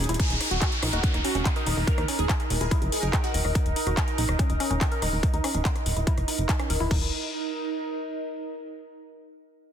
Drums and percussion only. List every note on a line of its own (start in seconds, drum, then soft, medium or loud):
0.04 closed hi-hat medium
0.09 closed hi-hat medium
0.14 closed hi-hat medium
0.20 kick loud
0.20 closed hi-hat medium
0.30 closed hi-hat soft
0.41 cross-stick soft
0.41 open hi-hat loud
0.51 closed hi-hat soft
0.62 kick loud
0.62 clap loud
0.62 closed hi-hat medium
0.72 closed hi-hat soft
0.83 cross-stick medium
0.83 open hi-hat loud
0.93 closed hi-hat soft
1.04 kick loud
1.04 closed hi-hat medium
1.14 cross-stick soft
1.14 closed hi-hat soft
1.25 open hi-hat loud
1.35 closed hi-hat soft
1.45 kick loud
1.45 clap loud
1.45 closed hi-hat loud
1.56 cross-stick soft
1.56 closed hi-hat soft
1.66 open hi-hat loud
1.87 kick loud
1.87 closed hi-hat medium
1.98 cross-stick medium
1.98 closed hi-hat soft
2.08 open hi-hat loud
2.19 closed hi-hat soft
2.29 kick loud
2.29 cross-stick soft
2.29 clap loud
2.29 closed hi-hat medium
2.40 closed hi-hat soft
2.50 open hi-hat loud
2.61 closed hi-hat soft
2.71 kick loud
2.71 cross-stick soft
2.71 closed hi-hat medium
2.82 closed hi-hat soft
2.92 open hi-hat loud
3.03 closed hi-hat soft
3.13 kick loud
3.13 cross-stick medium
3.13 clap loud
3.13 closed hi-hat medium
3.24 closed hi-hat soft
3.34 open hi-hat loud
3.45 cross-stick soft
3.55 kick loud
3.55 closed hi-hat medium
3.66 closed hi-hat soft
3.76 open hi-hat loud
3.87 cross-stick soft
3.87 closed hi-hat soft
3.97 kick loud
3.97 clap loud
3.97 closed hi-hat medium
4.08 closed hi-hat soft
4.18 open hi-hat loud
4.29 cross-stick medium
4.29 closed hi-hat soft
4.39 kick loud
4.39 closed hi-hat medium
4.50 closed hi-hat soft
4.60 cross-stick soft
4.60 open hi-hat loud
4.71 closed hi-hat soft
4.81 kick loud
4.81 clap loud
4.81 closed hi-hat medium
4.92 closed hi-hat soft
5.02 cross-stick soft
5.02 open hi-hat loud
5.23 kick loud
5.23 closed hi-hat medium
5.34 closed hi-hat soft
5.44 cross-stick medium
5.44 open hi-hat loud
5.55 closed hi-hat soft
5.65 kick loud
5.65 clap loud
5.65 closed hi-hat medium
5.76 cross-stick soft
5.76 closed hi-hat soft
5.86 open hi-hat loud
5.97 closed hi-hat soft
6.07 kick loud
6.07 closed hi-hat medium
6.18 cross-stick soft
6.18 closed hi-hat soft
6.28 open hi-hat loud
6.39 closed hi-hat soft
6.49 kick loud
6.49 clap loud
6.49 closed hi-hat medium
6.59 cross-stick medium
6.59 closed hi-hat soft
6.70 open hi-hat loud
6.91 kick loud
6.91 crash medium